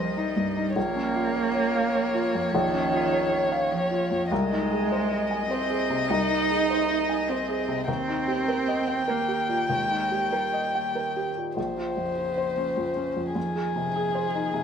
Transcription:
Already playing: felt piano C2 G2 D#4 C5 D#5, cello F3, violin D#5
0.16 cello G3, felt piano D#4
0.36 felt piano G2
0.56 felt piano D#4
0.76 felt piano A#1, cello A#3, violin C#5
0.96 felt piano C#4
1.16 felt piano F4
1.36 felt piano C#5
1.55 felt piano C#5
1.76 felt piano F5
1.95 felt piano C#5
2.15 felt piano F4
2.35 felt piano F2
2.53 felt piano A#1, cello D#3
2.74 felt piano C#4
2.94 felt piano F4
3.13 felt piano C#5
3.33 felt piano C#5
3.52 felt piano F5
3.71 cello F3, felt piano C#5
3.91 felt piano F4
4.11 felt piano F2
4.31 felt piano C2, cello G#3, violin D#5
4.52 felt piano D#4
4.71 felt piano G#4
4.92 felt piano C5
5.12 felt piano D#5
5.31 felt piano G#5
5.49 cello C4, felt piano C5
5.70 felt piano G#4
5.90 felt piano C3
6.09 felt piano C2, cello D#4
6.30 felt piano D#4
6.51 felt piano G#4
6.70 felt piano C5
6.90 felt piano D#5
7.09 felt piano G#5
7.28 cello C4, felt piano C5
7.49 felt piano G#4
7.68 felt piano C3
7.88 felt piano D#2, cello C4, violin G5
8.08 felt piano D#4
8.28 felt piano G4
8.48 felt piano A#4
8.68 felt piano D#5
8.88 felt piano G5
9.08 cello A#3, felt piano A#4
9.28 felt piano G4
9.49 felt piano A#2
9.70 felt piano D#2, cello G#3
9.90 felt piano D#4
10.11 felt piano G4
10.32 cello G3, felt piano A#4
10.53 felt piano D#5
10.75 felt piano G5
10.95 felt piano A#4
11.16 felt piano G4
11.37 felt piano A#2
11.56 felt piano A#1, cello C#3, violin C5
11.77 felt piano F4
11.97 felt piano F2
12.18 felt piano F4
12.38 felt piano C5
12.57 felt piano C#4
12.77 felt piano F2
12.97 felt piano C#4
13.16 felt piano F2
13.35 felt piano F2, cello D#3, violin G#4
13.55 felt piano G#4
13.76 felt piano C3
13.95 felt piano G#4
14.15 felt piano C5
14.34 felt piano D#4
14.54 felt piano C3

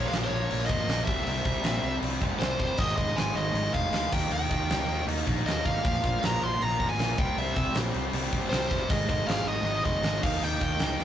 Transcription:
Already playing: overdriven electric guitar A#2 F3 A#3, analog synth pad A#3 F4 A#4
0.08 fingered electric bass A#1, overdriven electric guitar A#2, lead electric guitar F5
0.12 overdriven electric guitar F3 A#3, snare, crash
0.24 lead electric guitar C5 C#5
0.30 fingered electric bass A#1, overdriven electric guitar A#2 F3 A#3, crash
0.50 fingered electric bass A#1, overdriven electric guitar A#2 F3 A#3, crash
0.66 fingered electric bass G#1, overdriven electric guitar A#2 F3, lead electric guitar D#5, kick, crash
0.70 overdriven electric guitar A#3
0.88 fingered electric bass A#1, overdriven electric guitar A#2 F3 A#3, snare, crash
1.05 fingered electric bass C2, overdriven electric guitar C3 G3 C4, analog synth pad C4 G4, lead electric guitar E5, kick, crash
1.24 fingered electric bass C2, overdriven electric guitar C3 G3 C4, lead electric guitar E5, crash
1.45 fingered electric bass C2, overdriven electric guitar C3 G3 C4, kick, crash
1.63 fingered electric bass A#1, overdriven electric guitar C3 G3 C4, snare, crash
1.82 fingered electric bass C2, overdriven electric guitar C3 G3 C4, crash
2.01 fingered electric bass C2, overdriven electric guitar C3 G3 C4, crash
2.21 fingered electric bass G1, overdriven electric guitar C3 G3 C4, kick, crash
2.40 fingered electric bass C2, overdriven electric guitar C3 G3 C4, lead electric guitar C5, snare, crash
2.59 fingered electric bass G1, overdriven electric guitar C3 G3 C4, lead electric guitar C5, kick, crash
2.78 fingered electric bass G#1, overdriven electric guitar G#2 D#3 G#3, analog synth pad G#3 D#4 A#4, lead electric guitar D#5, kick, crash
2.96 fingered electric bass G#1, overdriven electric guitar G#2 D#3 G#3, lead electric guitar D#5, kick, crash
3.16 fingered electric bass G#1, overdriven electric guitar G#2 D#3 G#3, lead electric guitar G#5, snare, crash
3.35 fingered electric bass G#1, overdriven electric guitar G#2 D#3 G#3, lead electric guitar D#5, crash
3.54 fingered electric bass G#1, overdriven electric guitar G#2 D#3 G#3, crash
3.73 fingered electric bass F1, overdriven electric guitar G#2 D#3 G#3, lead electric guitar F5, kick, crash
3.91 fingered electric bass D2, overdriven electric guitar G#2 D#3 G#3, snare, crash
4.11 fingered electric bass D#2, overdriven electric guitar D#3 A#3 D#4, analog synth pad D#4 F5, lead electric guitar G5, kick, crash
4.30 fingered electric bass D#2, overdriven electric guitar D#3 A#3 D#4, lead electric guitar G5, crash
4.50 fingered electric bass D#2, overdriven electric guitar D#3 A#3 D#4, kick, crash
4.68 fingered electric bass C#2, overdriven electric guitar D#3 A#3 D#4, snare, crash
4.87 fingered electric bass D#2, overdriven electric guitar D#3 A#3 D#4, crash
5.06 fingered electric bass D#2, overdriven electric guitar D#3 A#3 D#4, crash
5.27 fingered electric bass A#1, overdriven electric guitar D#3 A#3 D#4, kick, crash
5.45 fingered electric bass D#2, overdriven electric guitar D#3 A#3 D#4, lead electric guitar D#5, snare, crash
5.65 fingered electric bass G#1, overdriven electric guitar D#3 A#3 D#4, lead electric guitar F5, kick, crash
5.82 fingered electric bass A#1, overdriven electric guitar A#2 F3 A#3, analog synth pad A#3 F4 C5, kick, crash
6.02 fingered electric bass A#1, overdriven electric guitar A#2 F3 A#3, kick, crash
6.21 fingered electric bass A#1, overdriven electric guitar A#2 F3 A#3, snare, crash
6.25 lead electric guitar A#5
6.40 fingered electric bass A#1, overdriven electric guitar A#2 F3 A#3, lead electric guitar C6, crash
6.59 fingered electric bass A#1, overdriven electric guitar A#2 F3 A#3, lead electric guitar A#5, crash
6.78 fingered electric bass G#1, overdriven electric guitar A#2 F3 A#3, kick, crash
6.89 lead electric guitar G#5
6.98 fingered electric bass A#1, overdriven electric guitar A#2 F3 A#3, snare, crash
7.18 fingered electric bass C2, overdriven electric guitar C3 G3 C4, analog synth pad C4 G4 C5, lead electric guitar G5, kick, crash
7.36 fingered electric bass C2, overdriven electric guitar C3 G3 C4, lead electric guitar E5, crash
7.55 fingered electric bass C2, overdriven electric guitar C3 G3 C4, kick, crash
7.75 fingered electric bass A#1, overdriven electric guitar C3 G3 C4, snare, crash
7.94 fingered electric bass C2, overdriven electric guitar C3 G3 C4, crash
8.13 fingered electric bass C2, overdriven electric guitar C3 G3 C4, crash
8.32 fingered electric bass G1, overdriven electric guitar C3 G3 C4, kick, crash
8.50 fingered electric bass C2, overdriven electric guitar C3 G3 C4, lead electric guitar C5, snare, crash
8.69 fingered electric bass G1, overdriven electric guitar C3 G3 C4, lead electric guitar C5, kick, crash
8.88 fingered electric bass G#1, overdriven electric guitar G#2 D#3 G#3, analog synth pad G#3 D#4 A#4, lead electric guitar D#5, kick, crash
9.08 fingered electric bass G#1, overdriven electric guitar G#2 D#3 G#3, lead electric guitar D#5, kick, crash
9.26 fingered electric bass G#1, overdriven electric guitar G#2 D#3 G#3, lead electric guitar F5, snare, crash
9.44 fingered electric bass G#1, overdriven electric guitar G#2 D#3 G#3, lead electric guitar D#5, crash
9.62 fingered electric bass G#1, overdriven electric guitar G#2 D#3 G#3, crash
9.83 fingered electric bass F1, overdriven electric guitar G#2 D#3 G#3, lead electric guitar D#5, kick, crash
10.02 fingered electric bass G#1, overdriven electric guitar G#2 D#3 G#3, snare, crash
10.22 fingered electric bass D#2, overdriven electric guitar D#3 A#3 D#4, lead electric guitar F5, analog synth pad F5, kick, crash
10.42 fingered electric bass D#2, overdriven electric guitar D#3 A#3 D#4, lead electric guitar G5, crash
10.60 fingered electric bass D#2, overdriven electric guitar D#3 A#3 D#4, kick, crash
10.79 fingered electric bass C#2, overdriven electric guitar D#3 A#3 D#4, snare, crash
10.98 fingered electric bass D#2, overdriven electric guitar D#3 A#3 D#4, crash

